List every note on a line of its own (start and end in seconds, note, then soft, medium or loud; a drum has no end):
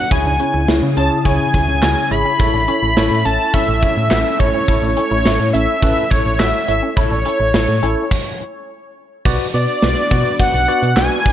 0.00 0.13 F#5 loud
0.11 0.24 C#2 loud
0.11 2.38 C#3 medium
0.11 2.38 C#4 medium
0.11 0.20 E4 medium
0.11 8.07 E4 medium
0.11 0.32 E4 loud
0.11 2.38 G#4 medium
0.11 0.32 G#4 medium
0.11 0.32 C#5 loud
0.11 0.68 G#5 loud
0.11 kick loud
0.11 closed hi-hat medium
0.25 0.38 C#2 loud
0.25 0.34 D4 medium
0.40 0.48 C#4 medium
0.40 0.61 E4 medium
0.40 0.61 G#4 medium
0.40 0.61 C#5 medium
0.40 closed hi-hat medium
0.54 0.67 C#2 medium
0.54 0.63 E4 medium
0.68 0.81 C#2 loud
0.68 0.86 E4 medium
0.68 0.89 E4 medium
0.68 0.89 G#4 medium
0.68 0.89 C#5 medium
0.68 snare loud
0.68 closed hi-hat medium
0.83 0.95 C#3 loud
0.97 1.09 C#2 loud
0.97 1.14 C#4 medium
0.97 1.18 E4 medium
0.97 1.18 G#4 medium
0.97 1.18 C#5 medium
0.97 1.10 A5 loud
0.97 closed hi-hat medium
1.25 1.38 C#2 loud
1.25 1.43 C#4 medium
1.25 1.46 E4 medium
1.25 1.46 G#4 medium
1.25 1.46 C#5 loud
1.25 2.12 G#5 loud
1.25 kick medium
1.25 closed hi-hat medium
1.54 1.66 C#2 loud
1.54 1.75 E4 medium
1.54 1.75 G#4 medium
1.54 1.75 C#5 medium
1.54 kick loud
1.54 closed hi-hat medium
1.68 1.81 C#2 loud
1.83 1.95 C#2 loud
1.83 2.04 E4 medium
1.83 2.00 F#4 medium
1.83 2.04 G#4 medium
1.83 2.04 C#5 medium
1.83 snare loud
1.83 clap medium
1.83 closed hi-hat medium
2.11 2.24 G#1 medium
2.11 2.20 E4 medium
2.11 2.32 E4 medium
2.11 2.32 G#4 medium
2.11 2.32 C#5 medium
2.11 3.27 B5 loud
2.11 closed hi-hat medium
2.25 2.34 C#4 medium
2.39 2.52 A1 loud
2.39 8.08 A3 medium
2.39 8.08 C#4 medium
2.39 2.48 E4 medium
2.39 2.61 E4 loud
2.39 2.61 A4 medium
2.39 2.61 C#5 loud
2.39 kick loud
2.39 closed hi-hat medium
2.54 2.66 A1 loud
2.54 2.63 D4 medium
2.68 2.77 C#4 medium
2.68 2.89 E4 medium
2.68 2.89 A4 medium
2.68 2.89 C#5 medium
2.68 closed hi-hat medium
2.83 2.95 A1 loud
2.83 2.91 E4 medium
2.97 3.09 A1 loud
2.97 3.14 E4 medium
2.97 3.18 E4 medium
2.97 3.18 A4 medium
2.97 3.18 C#5 loud
2.97 snare loud
2.97 closed hi-hat medium
3.11 3.24 A2 loud
3.25 3.38 A1 medium
3.25 3.43 C#4 medium
3.25 3.46 E4 medium
3.25 3.46 A4 medium
3.25 3.46 E5 medium
3.25 3.55 A5 loud
3.25 closed hi-hat medium
3.54 3.71 C#4 medium
3.54 3.75 E4 loud
3.54 3.75 A4 medium
3.54 4.41 E5 loud
3.54 3.75 E5 loud
3.54 kick medium
3.54 closed hi-hat medium
3.68 3.81 A1 loud
3.83 4.04 E4 medium
3.83 4.04 A4 medium
3.83 4.04 C#5 medium
3.83 kick loud
3.83 closed hi-hat medium
3.97 4.09 A2 medium
4.11 4.24 A1 loud
4.11 4.32 E4 medium
4.11 4.29 F#4 medium
4.11 4.32 A4 medium
4.11 4.32 E5 medium
4.11 snare loud
4.11 clap loud
4.11 closed hi-hat medium
4.39 4.52 A1 medium
4.39 4.49 E4 medium
4.39 4.61 E4 medium
4.39 4.61 A4 medium
4.39 4.96 C#5 loud
4.39 4.61 E5 medium
4.39 kick loud
4.39 closed hi-hat medium
4.54 4.63 C#4 medium
4.68 4.81 A1 loud
4.68 4.89 E4 loud
4.68 4.77 E4 medium
4.68 4.89 A4 medium
4.68 4.89 C#5 loud
4.68 kick loud
4.68 closed hi-hat medium
4.83 4.95 A1 medium
4.83 4.91 D4 medium
4.96 5.06 C#4 medium
4.96 5.18 E4 medium
4.96 5.18 A4 medium
4.96 5.50 C#5 loud
4.96 5.18 C#5 medium
4.96 closed hi-hat medium
5.11 5.24 A1 loud
5.11 5.20 E4 medium
5.25 5.38 A1 loud
5.25 5.43 E4 medium
5.25 5.47 E4 medium
5.25 5.47 A4 medium
5.25 5.47 C#5 medium
5.25 snare loud
5.25 closed hi-hat medium
5.40 5.52 A2 loud
5.53 5.67 A1 loud
5.53 5.71 C#4 medium
5.53 5.75 E4 medium
5.53 5.75 A4 medium
5.53 5.75 C#5 medium
5.53 5.80 E5 medium
5.53 closed hi-hat medium
5.82 5.95 A1 loud
5.82 6.00 C#4 medium
5.82 6.04 E4 loud
5.82 6.04 A4 medium
5.82 6.04 B4 loud
5.82 6.12 E5 loud
5.82 kick medium
5.82 closed hi-hat medium
6.11 6.24 A1 loud
6.11 6.32 E4 medium
6.11 6.32 A4 medium
6.11 6.41 C#5 medium
6.11 6.32 C#5 medium
6.11 kick loud
6.11 closed hi-hat medium
6.26 6.38 A1 loud
6.39 6.52 A1 loud
6.39 6.61 E4 medium
6.39 6.57 F#4 medium
6.39 6.61 A4 medium
6.39 6.61 C#5 medium
6.39 6.67 E5 medium
6.39 snare loud
6.39 clap loud
6.39 closed hi-hat medium
6.68 6.81 G#1 medium
6.68 6.77 E4 medium
6.68 6.89 E4 medium
6.68 6.89 A4 medium
6.68 6.89 C#5 medium
6.68 6.81 E5 medium
6.68 closed hi-hat medium
6.83 6.91 C#4 medium
6.96 7.09 A1 loud
6.96 7.06 E4 loud
6.96 7.18 E4 loud
6.96 7.18 A4 medium
6.96 8.64 C#5 medium
6.96 7.18 C#5 loud
6.96 kick loud
6.96 closed hi-hat medium
7.11 7.24 A1 loud
7.11 7.20 D4 medium
7.25 7.34 C#4 medium
7.25 7.47 E4 medium
7.25 7.47 A4 medium
7.25 7.47 C#5 medium
7.25 closed hi-hat medium
7.40 7.52 A1 loud
7.40 7.48 E4 medium
7.54 7.66 A1 loud
7.54 7.72 E4 medium
7.54 7.75 E4 medium
7.54 7.75 A4 medium
7.54 7.75 C#5 medium
7.54 snare loud
7.54 closed hi-hat medium
7.68 7.81 A2 loud
7.82 7.95 A1 medium
7.82 8.00 C#4 medium
7.82 8.04 E4 medium
7.82 8.04 A4 medium
7.82 8.04 C#5 loud
7.82 closed hi-hat medium
8.11 kick loud
8.11 crash medium
9.25 9.38 B1 loud
9.25 11.33 B3 medium
9.25 11.33 D4 medium
9.25 9.46 F#4 loud
9.25 11.33 F#4 medium
9.25 9.46 B4 loud
9.25 9.46 D5 loud
9.25 kick loud
9.25 crash loud
9.40 closed hi-hat medium
9.54 9.67 B2 loud
9.54 9.75 F#4 medium
9.54 9.75 B4 medium
9.54 9.75 D5 medium
9.54 10.36 D5 loud
9.54 closed hi-hat medium
9.68 closed hi-hat medium
9.82 9.95 B1 loud
9.82 10.04 F#4 medium
9.82 10.04 B4 medium
9.82 10.04 D5 medium
9.82 snare loud
9.97 closed hi-hat medium
10.11 10.24 B2 loud
10.11 10.32 F#4 loud
10.11 10.32 B4 medium
10.11 10.32 D5 loud
10.11 kick medium
10.11 closed hi-hat medium
10.26 closed hi-hat medium
10.40 10.61 F#4 medium
10.40 10.61 B4 medium
10.40 10.61 D5 medium
10.40 10.93 F#5 loud
10.40 kick medium
10.40 closed hi-hat medium
10.54 10.66 B1 medium
10.54 closed hi-hat medium
10.68 10.89 F#4 loud
10.68 10.89 B4 medium
10.68 10.89 D5 loud
10.68 closed hi-hat medium
10.83 10.95 B2 medium
10.83 closed hi-hat medium
10.97 11.09 B1 loud
10.97 11.18 F#4 medium
10.97 11.18 B4 medium
10.97 11.18 D5 medium
10.97 11.33 G#5 loud
10.97 snare loud
10.97 clap loud
11.11 closed hi-hat medium
11.25 11.33 A1 medium
11.25 11.33 F#4 medium
11.25 11.33 B4 medium
11.25 11.33 D5 medium
11.25 kick loud
11.25 open hi-hat medium